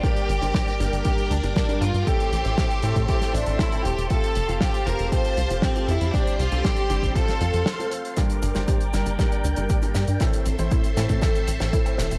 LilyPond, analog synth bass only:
\new Staff \with { instrumentName = "Analog synth bass" } { \clef bass \time 4/4 \key g \dorian \tempo 4 = 118 r8 g,,16 g,,16 r8 g,,16 g,,16 r8 d,16 g,,16 r8 g,16 g,16 | r8 a,,16 a,,16 r8 a,16 a,16 r8 a,,16 a,,16 r8 e,,16 e,,16 | r8 f,,16 f,,16 r8 f,,16 f,,16 r8 c,16 f,,16 r8 f,16 f,16 | r8 c,16 c,16 r8 g,,16 g,,16 r8 f,16 f,16 r4 |
r8 g,,16 g,,16 r8 g,,16 g,,16 r8 d,16 g,,16 r8 g,16 g,16 | r8 a,,16 a,,16 r8 a,16 a,16 r8 a,,16 a,,16 r8 e,,16 e,,16 | }